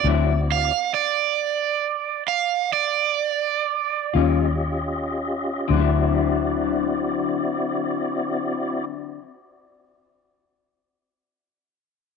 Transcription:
<<
  \new Staff \with { instrumentName = "Overdriven electric guitar" } { \time 12/8 \key d \mixolydian \tempo 4. = 37 r8 f''8 d''4. f''8 d''4. r4. | r1. | }
  \new Staff \with { instrumentName = "Tonewheel organ" } { \time 12/8 \key d \mixolydian <c' e' fis' d''>4 r2. r8 <des' f' g' ees''>4. | <c' e' fis' d''>1. | }
  \new Staff \with { instrumentName = "Clean electric guitar" } { \time 12/8 \key d \mixolydian <d fis c' e'>8 r1 <g des' f'>8 r4 | <d fis c' e'>1. | }
  \new Staff \with { instrumentName = "Fingered electric bass" } { \clef bass \time 12/8 \key d \mixolydian d,4 r2. r8 ees,4. | d,1. | }
>>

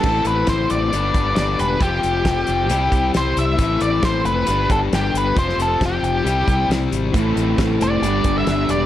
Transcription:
<<
  \new Staff \with { instrumentName = "Lead electric guitar" } { \time 4/4 \key a \minor \tempo 4 = 135 a'8 b'8 c''8 d''4. d''8 b'8 | g'2. c''8 e''8~ | e''8 d''8 c''8 b'4 a'8 g'8 b'8 | c''8 a'8 g'2 r4 |
r4. d''4~ d''16 e''8. d''8 | }
  \new Staff \with { instrumentName = "Distorted electric guitar" } { \time 4/4 \key a \minor <a, e c' e' a'>2 <g, d g b d' g'>2 | <f c' f' g'>2 <c g c' e' g'>2 | <a, e c' e' a'>2 <g, d g b d' g'>2 | <f c' f' g'>2 <c g c' e' g'>2 |
<a, e c' e' a'>2 <g, d g b d' g'>2 | }
  \new Staff \with { instrumentName = "Distorted electric guitar" } { \time 4/4 \key a \minor r1 | r1 | r1 | r1 |
a,8 c'8 a8 c'8 g8 b8 d'8 g'8 | }
  \new Staff \with { instrumentName = "Fingered electric bass" } { \clef bass \time 4/4 \key a \minor a,,8 a,,8 a,,8 a,,8 g,,8 g,,8 g,,8 e,,8 | f,,8 f,,8 f,,8 f,,8 c,8 c,8 c,8 c,8 | a,,8 a,,8 a,,8 f,,8 g,,8 g,,8 g,,8 g,,8 | f,,8 f,,8 f,,8 f,,8 c,8 c,8 c,8 gis,,8 |
a,,8 a,,8 a,,8 f,,8 g,,8 g,,8 g,,8 e,,8 | }
  \new DrumStaff \with { instrumentName = "Drums" } \drummode { \time 4/4 <cymc bd>8 hh8 <hh bd sn>8 hh8 hh8 <hh bd>8 <hh sn>8 hh8 | <hh bd>8 hh8 <hh bd sn>8 hh8 hh8 <hh bd>8 <hh sn>8 hh8 | <hh bd>8 hh8 <hh bd sn>8 hh8 hh8 <hh bd>8 <hh sn>8 hh8 | <hh bd>16 sn16 hh8 <hh bd sn>8 hh8 hh8 <hh bd>8 <hh sn>8 hh8 |
<hh bd>8 hh8 <hh bd sn>8 hh8 hh8 <hh bd>8 <hh sn>8 hh8 | }
>>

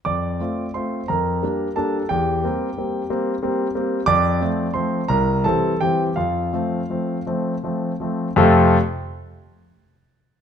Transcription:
<<
  \new Staff \with { instrumentName = "Grand piano" } { \time 6/8 \key f \major \tempo 4. = 58 <d'' d'''>4 <c'' c'''>8 <bes' bes''>4 <a' a''>8 | <g' g''>2~ <g' g''>8 r8 | <d'' d'''>4 <c'' c'''>8 <bes' bes''>8 <a' a''>8 <g' g''>8 | <f' f''>4. r4. |
<f, c a c' f' a'>8 r2 r8 | }
  \new Staff \with { instrumentName = "Grand piano" } { \time 6/8 \key f \major f,8 <a c' f'>8 <a c' f'>8 f,8 <g bes d'>8 <g bes d'>8 | e,8 <g bes c'>8 <g bes c'>8 <g bes c'>8 <g bes c'>8 <g bes c'>8 | f,8 <f a c'>8 <f a c'>8 c,8 <e g c'>8 <e g c'>8 | f,8 <f a c'>8 <f a c'>8 <f a c'>8 <f a c'>8 <f a c'>8 |
r2. | }
>>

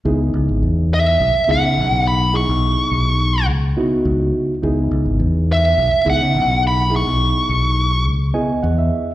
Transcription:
<<
  \new Staff \with { instrumentName = "Lead electric guitar" } { \time 4/4 \key cis \minor \tempo 4 = 105 r4. e''4 fis''4 b''8 | cis'''2 r2 | r4. e''4 fis''4 b''8 | cis'''2 r2 | }
  \new Staff \with { instrumentName = "Reed electric piano" } { \time 4/4 \key cis \minor << { r1 | r1 | r1 | r2 r8 gis''8 fis''16 e''8. | } \\ { <b dis' e' gis'>4.~ <b dis' e' gis'>16 r8. <b dis' e' gis'>4. | <b dis' e' gis'>4.~ <b dis' e' gis'>16 r8. <b dis' e' fis'>4. | <b dis' e' gis'>4.~ <b dis' e' gis'>16 r8. <b dis' e' gis'>4. | <b dis' e' gis'>4.~ <b dis' e' gis'>16 r8. <b e' gis' dis''>4. | } >> }
  \new Staff \with { instrumentName = "Fingered electric bass" } { \clef bass \time 4/4 \key cis \minor cis,8 cis,16 gis,,16 e,4 b,,16 r16 cis,16 cis16 b,,4~ | b,,16 b,,8 r16 b,,4 cis,8 r8 cis,8 r8 | cis,8 cis,16 gis,,16 e,4 b,,16 r16 cis,16 cis16 b,,4~ | b,,16 b,,8 r16 b,,4 cis,8 r8 e,8 r8 | }
>>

